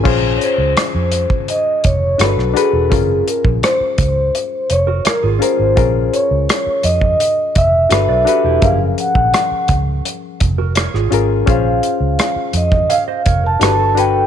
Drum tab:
CC |x---------------|----------------|----------------|----------------|
HH |--x-x-x-x-x-x-x-|x-x-x-x-x-x-x-x-|x-x-x-x-x-x-x-x-|x-x-x-x-x-x-x-x-|
SD |----r-------rr--|----r-------r---|----r-------r---|----r-------rr--|
BD |o------o--o-----|o--o--o---------|o------o--o-----|o--o--o---o-----|

CC |----------------|
HH |x-x-x-x-x-x-x-x-|
SD |----r-------r---|
BD |o------o--o-----|